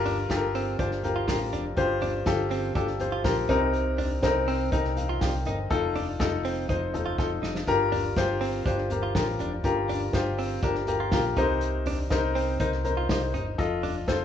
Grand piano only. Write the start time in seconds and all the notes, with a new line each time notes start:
Already playing: G2 F4 G4 A#4
0.30 F4 G4 A4
0.37 A#4
0.78 F4 G4 C5
1.03 F4 G4 A#4
1.28 F4 G4 A#4
1.77 G2 F4 G4 C5
2.26 F4 G4 A4
2.76 F4 G4 A4
3.00 F4 G4 C5
3.24 F4 G4 A#4
3.49 C3 C4 D#4 A#4
4.23 C4 D#4 A#4
4.72 C4 D#4 A#4
4.97 C5 F5
5.21 D5 G5
5.46 A#4 D#5
5.70 D#4 F4 A4
6.20 D#4 F4 A4
6.69 D#4 F4 C5
6.93 D#4 F4 A4
7.18 D#4 F4 A4
7.67 G2 F4 G4 A#4
8.17 F4 G4 C5
8.66 F4 G4 C5
8.91 F4 G4 A#4
9.15 F4 G4 A#4
9.64 G2 F4 G4 A#4
10.14 F4 G4 C5
10.63 F4 G4 A#4
10.88 F4 G4 A#4
11.13 F4 G4 A#4
11.38 C3 D#4 A#4 C5
12.11 D#4 A#4 C5
12.59 D#4 A#4 C5
12.84 D#4 A#4 C5
13.09 D#4 A#4 C5
13.58 F4 A4 D#5
14.08 F4 A4 C5